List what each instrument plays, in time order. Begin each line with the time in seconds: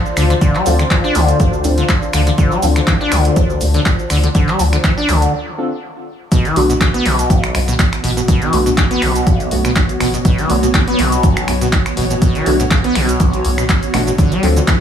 Already playing: synth stab C4 D4 F4 A4, analog synth pad F4 C5 D5 A5
0.06 shaker
0.17 sub bass D2, acid bass D3, finger snap, open hi-hat, shaker
0.30 acid bass D3, closed hi-hat, shaker
0.41 acid bass D3, kick, closed hi-hat, shaker
0.55 acid bass G3, clap, shaker
0.66 sub bass D2, acid bass E3, synth stab C4 D4 F4 A4, open hi-hat, shaker
0.79 acid bass D3, finger snap, closed hi-hat, shaker
0.90 acid bass E3, kick, clap, closed hi-hat, shaker
1.04 acid bass D4, shaker
1.15 sub bass D2, acid bass D3, open hi-hat, shaker
1.29 closed hi-hat, shaker
1.40 acid bass D2, kick, closed hi-hat, shaker
1.53 shaker
1.64 sub bass D2, acid bass E3, synth stab C4 D4 F4 A4, open hi-hat, shaker
1.78 acid bass D3, closed hi-hat, shaker
1.89 kick, clap, closed hi-hat, shaker
2.02 shaker
2.13 sub bass D2, acid bass D3, finger snap, open hi-hat, shaker
2.27 acid bass D3, closed hi-hat, shaker
2.38 acid bass D3, kick, closed hi-hat, shaker
2.52 acid bass G3, shaker
2.62 sub bass D2, acid bass E3, synth stab C4 D4 F4 A4, open hi-hat, shaker
2.76 acid bass D3, finger snap, closed hi-hat, shaker
2.87 acid bass E3, kick, clap, closed hi-hat, shaker
3.01 acid bass D4, shaker
3.12 sub bass D2, acid bass D3, finger snap, open hi-hat, shaker
3.25 closed hi-hat, shaker
3.36 acid bass D2, kick, closed hi-hat, shaker
3.50 shaker
3.61 sub bass D2, acid bass E3, open hi-hat, shaker
3.74 acid bass D3, closed hi-hat, shaker
3.85 kick, clap, closed hi-hat, shaker
3.99 shaker
4.10 sub bass D2, acid bass D3, finger snap, open hi-hat, shaker
4.24 acid bass D3, closed hi-hat, shaker
4.35 acid bass D3, kick, closed hi-hat, shaker
4.48 acid bass G3, clap, shaker
4.59 sub bass D2, acid bass E3, open hi-hat, shaker
4.73 acid bass D3, finger snap, closed hi-hat, shaker
4.84 acid bass E3, kick, clap, closed hi-hat, shaker
4.97 acid bass D4, shaker
5.09 sub bass D2, acid bass D3, finger snap, open hi-hat, shaker
5.22 closed hi-hat, shaker
5.58 synth stab C4 D4 F4 A4
6.32 acid bass B2, ambient pad B3, kick, closed hi-hat, shaker
6.44 acid bass E3, ambient pad F#4, closed hi-hat, shaker
6.56 sub bass B1, acid bass C#3, synth stab A3 B3 D4 F#4, open hi-hat
6.70 acid bass B2, closed hi-hat, shaker
6.81 acid bass C#3, kick, clap, closed hi-hat, shaker
6.94 acid bass B3, closed hi-hat, shaker
7.05 sub bass B1, acid bass B2, open hi-hat
7.19 closed hi-hat, shaker
7.30 acid bass B1, kick, closed hi-hat, shaker
7.44 finger snap, closed hi-hat, shaker
7.55 sub bass B1, acid bass C#3, finger snap, open hi-hat
7.68 acid bass B2, closed hi-hat, shaker
7.79 ambient pad C#5, kick, clap, closed hi-hat, shaker
7.93 finger snap, closed hi-hat, shaker
8.04 sub bass A1, acid bass B2, open hi-hat
8.17 acid bass B2, closed hi-hat, shaker
8.28 acid bass B2, kick, closed hi-hat, shaker
8.42 acid bass E3, closed hi-hat, shaker
8.53 sub bass B1, acid bass C#3, synth stab A3 B3 D4 F#4, open hi-hat
8.66 acid bass B2, closed hi-hat, shaker
8.77 acid bass C#3, kick, clap, closed hi-hat, shaker
8.91 acid bass B3, closed hi-hat, shaker
9.02 sub bass B1, acid bass B2, finger snap, open hi-hat
9.16 closed hi-hat, shaker
9.27 acid bass B1, kick, closed hi-hat, shaker
9.40 closed hi-hat, shaker
9.51 sub bass B1, acid bass C#3, synth stab A3 B3 D4 F#4, open hi-hat
9.65 acid bass B2, finger snap, closed hi-hat, shaker
9.76 kick, clap, closed hi-hat, shaker
9.89 closed hi-hat, shaker
10.00 sub bass A1, acid bass B2, finger snap, open hi-hat
10.14 acid bass B2, closed hi-hat, shaker
10.25 acid bass B2, kick, closed hi-hat, shaker
10.38 acid bass E3, closed hi-hat, shaker
10.50 sub bass B1, acid bass C#3, synth stab A3 B3 D4 F#4, open hi-hat
10.63 acid bass B2, closed hi-hat, shaker
10.74 acid bass C#3, kick, clap, closed hi-hat, shaker
10.88 acid bass B3, closed hi-hat, shaker
10.99 sub bass B1, acid bass B2, open hi-hat
11.12 closed hi-hat, shaker
11.23 acid bass B1, kick, closed hi-hat, shaker
11.37 finger snap, closed hi-hat, shaker
11.48 sub bass B1, acid bass C#3, finger snap, open hi-hat
11.61 acid bass B2, closed hi-hat, shaker
11.73 kick, clap, closed hi-hat, shaker
11.86 finger snap, closed hi-hat, shaker
11.97 sub bass A1, acid bass B2, open hi-hat
12.11 acid bass B2, closed hi-hat, shaker
12.22 acid bass B2, kick, closed hi-hat, shaker
12.35 acid bass E3, closed hi-hat, shaker
12.46 sub bass B1, acid bass C#3, synth stab A3 B3 D4 F#4, open hi-hat
12.60 acid bass B2, closed hi-hat, shaker
12.71 acid bass C#3, kick, clap, closed hi-hat, shaker
12.84 acid bass B3, closed hi-hat, shaker
12.95 sub bass B1, acid bass B2, finger snap, open hi-hat
13.09 closed hi-hat, shaker
13.20 acid bass B1, kick, closed hi-hat, shaker
13.33 closed hi-hat, shaker
13.45 sub bass B1, acid bass C#3, open hi-hat
13.58 acid bass B2, finger snap, shaker
13.69 kick, clap, closed hi-hat, shaker
13.83 closed hi-hat, shaker
13.94 sub bass A1, acid bass B2, synth stab A3 B3 D4 F#4, finger snap, open hi-hat
14.07 acid bass B2, closed hi-hat, shaker
14.18 acid bass D3, ambient pad D4, kick, closed hi-hat, shaker
14.32 acid bass G3, closed hi-hat, shaker
14.40 sub bass D2, acid bass E3, synth stab C4 D4 F4 A4, ambient pad A4, open hi-hat
14.57 acid bass D3, ambient pad E5, shaker
14.68 acid bass E3, kick, clap, closed hi-hat, shaker